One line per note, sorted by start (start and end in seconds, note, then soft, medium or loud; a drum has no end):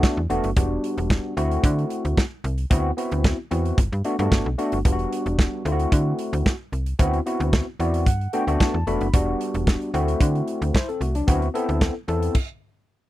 0.00 0.19 A3 medium
0.00 0.19 B3 medium
0.00 0.19 D4 medium
0.00 0.19 F#4 medium
0.00 kick loud
0.00 snare loud
0.17 0.27 E2 medium
0.29 0.41 E1 medium
0.29 0.49 A3 medium
0.29 0.49 B3 medium
0.29 0.49 D4 medium
0.29 0.50 F#4 loud
0.29 closed hi-hat medium
0.44 0.54 F#1 medium
0.44 closed hi-hat medium
0.56 0.78 E1 loud
0.56 1.33 G3 medium
0.56 1.33 B3 medium
0.56 1.33 D4 medium
0.56 1.33 F#4 medium
0.56 kick loud
0.56 closed hi-hat loud
0.84 closed hi-hat medium
0.98 1.19 E1 loud
0.98 closed hi-hat soft
1.10 kick loud
1.10 snare loud
1.37 1.58 D2 loud
1.37 2.23 A3 medium
1.37 2.23 C4 medium
1.37 2.23 E4 medium
1.37 2.23 F#4 loud
1.37 closed hi-hat medium
1.51 closed hi-hat medium
1.64 1.85 D3 loud
1.64 kick loud
1.64 closed hi-hat loud
1.79 closed hi-hat soft
1.90 closed hi-hat medium
2.05 2.15 D2 medium
2.05 closed hi-hat medium
2.17 kick medium
2.17 snare loud
2.44 2.65 C2 loud
2.44 closed hi-hat medium
2.58 closed hi-hat medium
2.70 2.92 D2 loud
2.70 2.90 B3 medium
2.70 2.90 C4 medium
2.70 2.90 E4 medium
2.70 2.90 F#4 loud
2.70 kick loud
2.70 closed hi-hat loud
2.97 3.36 B3 medium
2.97 3.36 C4 medium
2.97 3.36 E4 medium
2.97 3.37 F#4 medium
2.97 closed hi-hat medium
3.12 3.33 D2 medium
3.12 closed hi-hat soft
3.24 kick loud
3.24 snare loud
3.51 3.73 E2 medium
3.51 3.78 B3 medium
3.51 3.78 C4 medium
3.51 3.78 E4 medium
3.51 3.78 F#4 medium
3.51 closed hi-hat medium
3.65 closed hi-hat medium
3.78 3.89 G1 loud
3.78 kick loud
3.78 closed hi-hat medium
3.92 4.02 G2 medium
3.92 closed hi-hat soft
4.04 4.15 A3 medium
4.04 4.15 B3 medium
4.04 4.15 D4 medium
4.04 4.15 F#4 loud
4.04 closed hi-hat medium
4.19 4.29 G2 loud
4.19 4.47 A3 medium
4.19 4.47 B3 medium
4.19 4.48 D4 medium
4.19 4.48 F#4 medium
4.19 closed hi-hat medium
4.32 4.43 G1 medium
4.32 kick loud
4.32 snare loud
4.46 4.56 B1 medium
4.58 4.78 A3 medium
4.58 4.78 B3 medium
4.58 4.78 D4 medium
4.58 4.78 F#4 loud
4.58 closed hi-hat medium
4.72 4.83 G1 medium
4.72 closed hi-hat medium
4.85 5.06 E1 loud
4.85 5.62 G3 medium
4.85 5.62 B3 medium
4.85 5.62 D4 medium
4.85 4.92 F4 medium
4.85 kick loud
4.85 closed hi-hat loud
4.92 5.65 F#4 medium
4.99 closed hi-hat soft
5.13 closed hi-hat medium
5.26 5.47 E1 loud
5.26 closed hi-hat soft
5.39 kick loud
5.39 snare loud
5.65 5.87 D2 loud
5.65 6.51 A3 medium
5.65 6.51 C4 medium
5.65 6.52 E4 medium
5.65 5.72 F4 medium
5.65 closed hi-hat medium
5.72 6.55 F#4 loud
5.79 closed hi-hat medium
5.92 6.13 D3 loud
5.92 kick loud
5.92 closed hi-hat medium
6.19 closed hi-hat medium
6.33 6.43 D2 loud
6.33 closed hi-hat medium
6.46 kick loud
6.46 snare medium
6.72 6.94 C2 medium
6.72 closed hi-hat medium
6.86 closed hi-hat medium
6.99 7.21 D2 loud
6.99 7.19 B3 medium
6.99 7.19 C4 medium
6.99 7.19 E4 medium
6.99 7.19 F#4 loud
6.99 kick loud
6.99 closed hi-hat loud
7.13 closed hi-hat soft
7.26 7.65 B3 medium
7.26 7.65 C4 medium
7.26 7.65 E4 medium
7.26 7.65 F#4 medium
7.26 closed hi-hat medium
7.40 7.61 D2 loud
7.40 closed hi-hat soft
7.53 kick loud
7.53 snare loud
7.79 8.08 E2 medium
7.79 8.06 B3 medium
7.79 8.07 C4 medium
7.79 8.07 E4 medium
7.79 8.07 F#4 medium
7.79 8.05 D5 medium
7.79 closed hi-hat medium
7.94 closed hi-hat medium
8.06 8.28 G2 loud
8.06 8.32 F#5 medium
8.06 kick loud
8.06 closed hi-hat medium
8.21 closed hi-hat soft
8.33 8.43 A3 medium
8.33 8.43 B3 medium
8.33 8.44 D4 medium
8.33 8.44 F#4 loud
8.33 8.58 G5 medium
8.33 closed hi-hat medium
8.47 8.57 D2 medium
8.47 8.76 A3 medium
8.47 8.76 B3 medium
8.47 8.76 D4 medium
8.47 8.76 F#4 medium
8.47 closed hi-hat medium
8.60 8.85 A5 medium
8.60 kick loud
8.60 snare loud
8.74 8.84 E2 medium
8.87 8.98 E1 medium
8.87 9.06 A3 medium
8.87 9.07 B3 medium
8.87 9.07 D4 medium
8.87 9.07 F#4 medium
8.87 9.12 B5 medium
8.87 closed hi-hat medium
9.01 9.11 F#1 medium
9.01 closed hi-hat soft
9.13 9.35 E1 loud
9.13 9.90 G3 medium
9.13 9.90 B3 medium
9.13 9.90 D4 medium
9.13 9.91 F#4 medium
9.13 kick loud
9.13 closed hi-hat loud
9.41 closed hi-hat medium
9.54 9.76 E1 loud
9.54 closed hi-hat soft
9.67 kick loud
9.67 snare loud
9.81 closed hi-hat soft
9.94 10.15 D2 loud
9.94 10.74 A3 medium
9.94 10.74 C4 medium
9.94 10.74 E4 medium
9.94 10.74 F#4 medium
9.94 closed hi-hat medium
10.08 closed hi-hat medium
10.21 10.42 D3 loud
10.21 kick loud
10.21 closed hi-hat loud
10.35 closed hi-hat soft
10.48 closed hi-hat medium
10.62 10.72 D2 medium
10.62 closed hi-hat medium
10.74 10.88 E4 medium
10.74 10.88 C5 medium
10.74 kick loud
10.74 snare loud
10.89 11.01 C4 medium
10.89 11.01 A4 medium
10.89 closed hi-hat soft
11.01 11.22 C2 medium
11.01 11.15 A3 medium
11.01 11.15 F#4 medium
11.01 closed hi-hat medium
11.15 11.41 F#3 medium
11.15 11.41 D4 medium
11.15 closed hi-hat medium
11.27 11.49 D2 loud
11.27 11.47 B3 medium
11.27 11.47 C4 medium
11.27 11.47 E4 medium
11.27 11.47 F#4 loud
11.27 kick loud
11.27 closed hi-hat medium
11.42 closed hi-hat soft
11.54 11.93 B3 medium
11.54 11.93 C4 medium
11.54 11.94 E4 medium
11.54 11.94 A4 medium
11.54 closed hi-hat medium
11.69 11.90 D2 medium
11.69 closed hi-hat medium
11.81 kick loud
11.81 snare loud
12.08 12.30 E2 medium
12.08 12.35 B3 medium
12.08 12.35 C4 medium
12.08 12.35 E4 medium
12.08 12.35 A4 medium
12.08 closed hi-hat medium
12.22 closed hi-hat medium
12.35 kick loud
12.35 crash medium